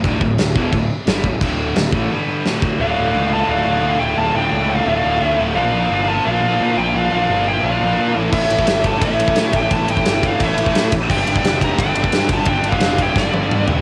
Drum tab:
CC |x---x---x---x---|x---x-----------|----------------|----------------|
RD |----------------|----------------|----------------|----------------|
SD |----o-------o---|----o-------o---|----------------|----------------|
T1 |----------------|----------------|----------------|----------------|
T2 |----------------|----------------|----------------|----------------|
FT |----------------|----------------|----------------|----------------|
BD |o-o---o-o-----o-|o-----o-------o-|----------------|----------------|

CC |----------------|----------------|x---------------|----------------|
RD |----------------|----------------|--x-x-x-x-x-x-x-|x-x-x-x-x-x-x-x-|
SD |----------------|----------------|----o-------o---|----o-------o---|
T1 |----------------|----------------|----------------|----------------|
T2 |----------------|----------------|----------------|----------------|
FT |----------------|----------------|----------------|----------------|
BD |----------------|----------------|o--o--o-o--o--o-|o--o--o-o--o--o-|

CC |x---------------|----------------|
RD |--x-x-x-x-x-x-x-|x-x-x-x---------|
SD |----o-------o---|----o---o-------|
T1 |----------------|----------o-----|
T2 |----------------|------------o---|
FT |----------------|--------------o-|
BD |o--o--o-o--o--o-|o--o--o-o-------|